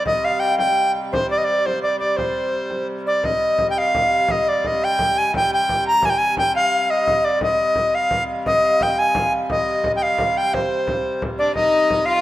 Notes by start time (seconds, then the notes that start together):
Already playing: C3 G3 C5 D5 F5
0.06 D#5, frame drum
0.24 F5
0.40 G5
0.58 G5, frame drum
0.76 frame drum
0.95 frame drum
1.12 C5, frame drum
1.30 D5
1.38 D#5
1.44 D5
1.66 C5, frame drum
1.83 D5, frame drum
1.99 D5, frame drum
2.17 C5, frame drum
2.54 frame drum
2.70 frame drum
3.06 D5
3.24 C3 G3 D#5, frame drum
3.58 D#5, frame drum
3.70 G5
3.77 F5
3.94 frame drum
4.11 F5
4.28 D#5, frame drum
4.47 D5
4.64 D#5, frame drum
4.82 G5
4.98 G5, frame drum
5.15 G#5
5.33 G5, frame drum
5.50 G5
5.69 frame drum
5.86 A#5
6.02 G#5, frame drum
6.10 G5
6.17 G#5
6.37 G5, frame drum
6.55 F5, frame drum
6.66 F5
6.78 F5
6.89 D#5
7.07 D#5, frame drum
7.25 D5
7.40 C3 G3 D#5, frame drum
7.75 frame drum
7.94 F5
8.11 frame drum
8.46 D#5, frame drum
8.64 F5
8.81 G5, frame drum
8.98 G#5
9.15 F5, frame drum
9.49 D#5, frame drum
9.84 D#5, frame drum
9.96 G5
10.01 F5
10.18 F5, frame drum
10.36 G5
10.54 C5, frame drum
10.87 frame drum
11.05 frame drum
11.22 frame drum
11.38 D4 D5
11.54 C3 G3 D#4 D#5, frame drum
11.89 D#5, frame drum
12.06 F4 F5